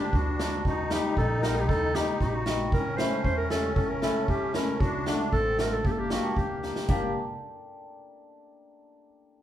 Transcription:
0.00 0.38 G3 medium
0.00 0.61 D4 loud
0.00 0.18 G4 medium
0.13 0.65 D2 medium
0.13 0.67 F#4 medium
0.13 kick medium
0.39 0.71 G3 medium
0.39 0.52 A#3 soft
0.39 0.53 D4 medium
0.39 snare medium
0.65 0.96 D#2 medium
0.65 2.44 D#4 loud
0.65 0.91 F#4 medium
0.65 kick medium
0.91 1.43 G3 medium
0.91 1.05 A#3 medium
0.91 1.05 D#4 medium
0.91 1.16 G4 medium
0.91 snare medium
1.17 1.69 A#1 medium
1.17 1.44 A4 medium
1.17 kick medium
1.42 1.94 G3 medium
1.42 1.57 A#3 medium
1.42 1.57 F#4 medium
1.42 1.57 A#4 medium
1.42 snare medium
1.56 1.69 G4 medium
1.56 snare soft
1.68 2.00 D#2 medium
1.68 1.97 A4 loud
1.68 kick medium
1.95 2.46 G3 medium
1.95 2.09 A#3 medium
1.95 2.09 D#4 medium
1.95 2.21 G4 medium
1.95 snare medium
2.21 2.72 A#1 medium
2.21 2.29 F#4 medium
2.21 kick medium
2.21 snare soft
2.28 2.36 G4 medium
2.35 2.73 F#4 medium
2.46 2.78 G3 medium
2.46 2.60 A#3 medium
2.46 2.60 D#4 medium
2.46 snare medium
2.72 3.04 A1 medium
2.72 4.78 C#4 loud
2.72 2.99 A#4 loud
2.72 kick medium
2.97 3.12 A3 medium
2.97 3.12 C#4 medium
2.97 3.12 E4 medium
2.97 3.24 C5 medium
2.97 snare medium
3.24 3.77 E2 medium
3.24 3.37 C5 loud
3.24 kick medium
3.37 3.50 A#4 loud
3.50 3.64 A3 medium
3.50 3.64 C#4 soft
3.50 3.64 G4 medium
3.50 3.75 A4 medium
3.50 snare medium
3.75 4.08 A1 medium
3.75 3.90 A4 medium
3.75 kick medium
3.88 4.04 A#4 medium
4.02 4.15 A3 medium
4.02 4.15 C#4 medium
4.02 4.16 E4 medium
4.02 4.28 A4 medium
4.02 snare medium
4.28 4.80 E2 medium
4.28 4.53 G4 medium
4.28 kick medium
4.54 4.67 A3 medium
4.54 4.68 C#4 soft
4.54 4.68 E4 medium
4.54 4.82 A#4 medium
4.54 snare medium
4.80 5.12 D2 medium
4.80 5.35 D4 loud
4.80 5.07 F#4 medium
4.80 kick medium
5.06 5.20 A3 medium
5.06 5.20 D4 medium
5.06 5.20 F#4 medium
5.06 snare medium
5.32 5.85 A1 medium
5.32 5.86 C4 loud
5.32 5.60 A4 loud
5.32 kick medium
5.59 5.72 A3 medium
5.59 5.72 D4 medium
5.59 5.72 F#4 medium
5.59 5.74 A#4 medium
5.59 snare medium
5.73 5.88 A4 medium
5.85 6.16 G1 medium
5.85 6.59 A#3 medium
5.85 5.92 G4 medium
5.85 kick medium
5.91 6.00 A4 medium
5.99 6.11 G4 medium
6.10 6.24 A#3 medium
6.10 6.25 D4 medium
6.10 6.39 F#4 medium
6.10 6.25 G4 medium
6.10 snare medium
6.37 6.68 D2 medium
6.37 6.89 G4 medium
6.37 kick medium
6.63 6.76 A#3 medium
6.63 6.76 D4 soft
6.63 6.76 G4 medium
6.63 snare soft
6.76 snare medium
6.88 7.13 G1 medium
6.88 7.13 A#3 medium
6.88 7.13 D4 medium
6.88 7.13 G4 medium
6.88 kick medium
6.88 crash medium

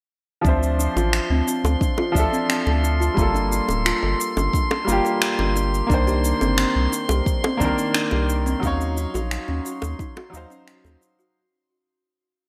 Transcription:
0.41 0.88 D2 medium
0.41 2.10 F3 medium
0.41 0.61 C4 medium
0.41 2.11 D4 medium
0.41 11.37 C6 medium
0.41 kick loud
0.45 2.13 C5 medium
0.45 2.12 E5 medium
0.45 cabasa soft
0.63 cabasa soft
0.79 0.88 D4 medium
0.79 cabasa medium
0.96 1.20 A1 medium
0.96 1.12 F4 medium
0.96 high bongo medium
0.96 cabasa soft
1.13 finger snap medium
1.13 cabasa soft
1.30 1.42 D2 medium
1.30 1.46 C4 loud
1.47 1.63 C4 medium
1.47 cabasa medium
1.64 1.76 D2 medium
1.64 high bongo medium
1.64 cabasa soft
1.81 1.91 D4 medium
1.81 kick loud
1.81 cabasa soft
1.98 2.14 F4 medium
1.98 high bongo medium
2.12 2.27 D2 medium
2.12 3.12 F3 medium
2.12 3.13 D4 medium
2.12 kick medium
2.16 3.16 A4 medium
2.16 3.14 E5 medium
2.16 cabasa medium
2.32 2.48 C4 medium
2.32 cabasa soft
2.49 2.65 C4 medium
2.49 finger snap loud
2.49 cabasa soft
2.67 3.10 D2 medium
2.67 high bongo soft
2.83 2.93 D4 medium
2.83 cabasa medium
3.00 3.16 F4 medium
3.00 cabasa soft
3.14 3.61 G1 medium
3.14 4.82 G3 medium
3.14 4.84 A#3 medium
3.14 kick loud
3.18 4.85 F4 medium
3.18 4.86 A4 medium
3.18 cabasa soft
3.35 3.50 D4 medium
3.35 cabasa soft
3.51 3.67 D4 medium
3.51 cabasa medium
3.69 3.93 D1 medium
3.69 high bongo medium
3.69 cabasa soft
3.85 3.95 F4 medium
3.85 finger snap medium
3.85 cabasa soft
4.03 4.15 G1 medium
4.03 4.19 A4 loud
4.21 cabasa medium
4.37 4.49 G1 medium
4.37 4.52 D4 loud
4.37 high bongo medium
4.37 cabasa soft
4.53 4.69 D4 medium
4.53 kick loud
4.53 cabasa soft
4.71 finger snap soft
4.71 high bongo medium
4.84 5.00 G1 medium
4.84 5.85 G3 medium
4.84 5.85 A#3 medium
4.84 4.97 F4 medium
4.89 5.87 F4 medium
4.89 5.88 G4 medium
4.89 cabasa medium
5.05 5.21 A4 medium
5.05 cabasa soft
5.22 finger snap loud
5.22 cabasa soft
5.39 5.82 G1 medium
5.39 5.54 D4 medium
5.39 high bongo medium
5.56 5.72 D4 medium
5.56 cabasa medium
5.74 cabasa soft
5.87 6.33 C2 loud
5.87 7.55 A#3 medium
5.87 7.56 D4 medium
5.87 6.00 D4 medium
5.87 kick loud
5.91 7.57 D#3 medium
5.91 7.59 C5 medium
5.91 cabasa soft
6.07 6.23 G4 loud
6.07 cabasa soft
6.25 cabasa medium
6.41 6.65 G1 loud
6.41 6.57 C4 loud
6.41 high bongo medium
6.41 cabasa soft
6.58 6.74 C4 medium
6.58 finger snap loud
6.58 cabasa soft
6.76 6.88 C2 medium
6.92 7.02 D4 medium
6.92 cabasa medium
7.09 7.21 C2 medium
7.09 7.26 G4 medium
7.09 high bongo medium
7.09 cabasa soft
7.26 kick loud
7.26 cabasa soft
7.44 7.60 C4 medium
7.44 high bongo medium
7.57 7.73 C2 medium
7.57 8.57 A#3 medium
7.57 7.77 C4 medium
7.57 8.58 D4 medium
7.57 kick medium
7.57 cabasa medium
7.62 8.60 D#3 medium
7.62 8.61 A#4 loud
7.79 cabasa soft
7.94 8.04 D4 medium
7.94 finger snap loud
7.94 cabasa soft
8.11 8.55 C2 medium
8.11 8.28 G4 medium
8.11 high bongo medium
8.30 cabasa medium
8.46 8.62 C4 loud
8.46 cabasa soft
8.60 9.06 D#2 loud
8.60 10.28 F#3 medium
8.60 8.79 C#4 medium
8.60 10.29 D#4 medium
8.60 kick loud
8.64 10.31 C#5 medium
8.64 10.30 F5 medium
8.64 cabasa soft
8.81 cabasa soft
8.97 9.07 D#4 medium
8.97 cabasa medium
9.14 9.38 A#1 medium
9.14 9.30 F#4 loud
9.14 high bongo medium
9.14 cabasa soft
9.31 finger snap loud
9.31 cabasa soft
9.48 9.60 D#2 medium
9.48 9.64 C#4 loud
9.65 9.81 C#4 medium
9.65 cabasa medium
9.82 9.94 D#2 medium
9.82 high bongo medium
9.82 cabasa soft
9.99 10.09 D#4 medium
9.99 kick loud
9.99 cabasa soft
10.17 10.33 F#4 medium
10.17 finger snap soft
10.17 high bongo medium
10.30 10.46 D#2 medium
10.30 11.30 F#3 medium
10.30 11.31 D#4 medium
10.34 11.34 C5 loud
10.34 11.32 F5 medium
10.34 cabasa medium
10.50 10.66 C#4 loud
10.50 cabasa soft
10.67 10.83 C#4 medium
10.67 finger snap loud
10.67 cabasa soft
10.84 10.97 D#2 loud
10.84 high bongo medium
10.84 cabasa soft
11.01 11.11 D#4 medium
11.01 cabasa medium
11.19 11.35 F#4 medium
11.19 cabasa soft

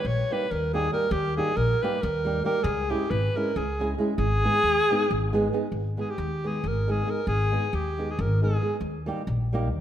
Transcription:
0.05 0.20 A#1 medium
0.05 0.34 C#5 loud
0.31 0.45 G3 medium
0.31 0.45 A#3 soft
0.31 0.45 D#4 medium
0.31 0.46 G4 medium
0.31 0.53 B4 medium
0.51 0.87 D#2 medium
0.51 0.73 A#4 medium
0.73 0.87 G3 medium
0.73 0.87 A#3 medium
0.73 0.87 D#4 medium
0.73 0.88 G4 medium
0.73 0.91 G#4 loud
0.92 1.06 G3 medium
0.92 1.06 A#3 soft
0.92 1.06 D#4 soft
0.92 1.07 G4 medium
0.92 1.13 A#4 loud
1.11 1.39 D#2 loud
1.11 1.36 G4 loud
1.36 1.51 G3 medium
1.36 1.51 A#3 medium
1.36 1.52 D#4 medium
1.36 1.52 G4 medium
1.36 1.58 G#4 medium
1.56 1.72 A#1 medium
1.56 1.84 A#4 loud
1.82 1.97 G3 medium
1.82 1.97 A#3 medium
1.82 1.98 D#4 medium
1.82 1.98 G4 medium
1.82 2.03 B4 medium
2.02 2.40 D#2 loud
2.02 2.45 A#4 medium
2.25 2.39 G3 medium
2.25 2.39 A#3 medium
2.25 2.40 D#4 medium
2.25 2.40 G4 medium
2.44 2.58 G3 medium
2.44 2.58 A#3 soft
2.44 2.59 D#4 medium
2.44 2.59 G4 medium
2.44 2.65 A#4 medium
2.63 2.92 C#2 loud
2.63 2.91 G#4 medium
2.89 3.04 G#3 medium
2.89 3.04 C#4 medium
2.89 3.05 E4 medium
2.89 3.12 G4 medium
2.89 3.05 G#4 medium
3.10 3.26 G#1 medium
3.10 3.38 B4 medium
3.36 3.50 G#3 medium
3.36 3.51 C#4 medium
3.36 3.51 E4 medium
3.36 3.51 G#4 medium
3.36 3.58 A#4 medium
3.56 3.93 C#2 medium
3.56 3.94 G#4 medium
3.79 3.93 G#3 medium
3.79 3.93 C#4 medium
3.79 3.94 E4 medium
3.79 3.94 G#4 medium
3.98 4.12 G#3 medium
3.98 4.13 C#4 soft
3.98 4.13 E4 soft
3.98 4.13 G#4 medium
4.18 4.46 G#1 medium
4.18 5.49 G#4 loud
4.44 4.58 G#3 medium
4.44 4.58 B3 medium
4.44 4.59 D#4 medium
4.44 4.59 G#4 medium
4.63 4.79 D#2 medium
4.90 5.04 G#3 medium
4.90 5.05 B3 medium
4.90 5.05 D#4 medium
4.90 5.06 G#4 medium
5.10 5.47 G#1 medium
5.33 5.47 G#3 medium
5.33 5.47 B3 medium
5.33 5.47 D#4 medium
5.33 5.48 G#4 medium
5.53 5.66 G#3 medium
5.53 5.66 B3 medium
5.53 5.67 D#4 medium
5.53 5.67 G#4 medium
5.72 5.99 G#1 medium
5.97 6.12 G#3 medium
5.97 6.12 B3 soft
5.97 6.12 D#4 soft
5.97 6.13 G#4 medium
5.97 6.11 G#4 medium
6.10 6.48 G4 medium
6.18 6.65 D#2 medium
6.44 6.58 G#3 medium
6.44 6.58 B3 medium
6.44 6.59 D#4 soft
6.44 6.59 G#4 medium
6.44 6.69 G#4 medium
6.64 7.01 G#1 medium
6.64 6.93 A#4 medium
6.88 7.01 G#3 medium
6.88 7.02 B3 soft
6.88 7.02 D#4 medium
6.88 7.02 G#4 medium
6.88 7.12 G#4 medium
7.05 7.20 G#3 soft
7.05 7.20 B3 soft
7.05 7.20 D#4 soft
7.05 7.21 G#4 medium
7.10 7.27 A#4 medium
7.27 7.54 G#1 medium
7.27 7.76 G#4 loud
7.52 7.66 G#3 medium
7.52 7.66 B3 soft
7.52 7.67 D#4 medium
7.52 7.67 G#4 medium
7.73 8.20 D#2 medium
7.73 8.12 G4 medium
7.98 8.13 G#3 medium
7.98 8.13 B3 soft
7.98 8.13 D#4 medium
7.98 8.13 G#4 medium
8.11 8.22 G#4 medium
8.19 8.56 G#1 loud
8.19 8.42 A#4 medium
8.42 8.55 G#3 medium
8.42 8.56 B3 medium
8.42 8.56 D#4 medium
8.42 8.78 G#4 medium
8.42 8.56 G#4 medium
8.61 8.75 G#3 soft
8.61 8.75 B3 soft
8.61 8.76 D#4 soft
8.61 8.76 G#4 medium
8.81 9.08 D#2 medium
9.06 9.21 G3 medium
9.06 9.21 A#3 medium
9.06 9.21 D#4 medium
9.06 9.22 G4 medium
9.27 9.72 A#1 medium
9.53 9.67 G3 medium
9.53 9.68 A#3 medium
9.53 9.68 D#4 medium
9.53 9.68 G4 medium
9.72 9.81 D#2 loud

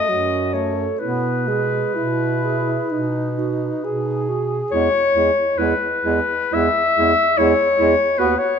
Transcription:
0.00 0.11 A3 soft
0.00 0.10 A4 soft
0.00 0.55 D#5 medium
0.09 0.89 F#2 soft
0.09 0.55 F#3 soft
0.09 0.56 F#4 soft
0.53 0.86 A3 soft
0.53 1.00 A4 soft
0.53 1.01 C#5 soft
0.99 1.84 B2 soft
0.99 1.49 B3 soft
0.99 1.49 E4 soft
0.99 4.29 B4 soft
1.47 1.94 G#3 soft
1.47 1.97 G#4 soft
1.95 2.80 B2 soft
1.95 2.93 E4 soft
1.95 2.45 E4 soft
2.44 2.91 G#4 soft
2.90 3.73 B2 soft
2.90 3.85 D#4 soft
2.90 3.40 D#4 soft
3.38 3.85 F#4 soft
3.84 4.63 B2 soft
3.84 4.30 D#4 soft
3.84 4.72 G#4 soft
4.29 4.60 F#4 soft
4.71 4.88 E2 soft
4.71 4.89 G#3 soft
4.71 4.89 E4 soft
4.71 5.60 C#5 medium
5.14 5.30 E2 soft
5.14 5.31 G#3 soft
5.14 5.31 E4 soft
5.58 5.74 E2 soft
5.58 5.74 G#3 soft
5.58 5.75 E4 soft
5.58 6.55 B4 medium
6.04 6.20 E2 soft
6.04 6.20 G#3 soft
6.04 6.20 E4 soft
6.52 6.69 E2 soft
6.52 6.69 G#3 soft
6.52 6.68 E4 soft
6.52 7.39 E5 medium
6.96 7.15 E2 soft
6.96 7.13 G#3 soft
6.96 7.12 E4 soft
7.38 7.55 E2 soft
7.38 7.54 G#3 soft
7.38 7.54 E4 soft
7.38 8.20 C#5 medium
7.78 7.96 E2 soft
7.78 7.95 G#3 soft
7.78 7.94 E4 soft
8.19 8.37 D#2 soft
8.19 8.36 B3 soft
8.19 8.35 F#4 soft
8.19 8.40 B4 medium
8.39 8.59 C#5 medium

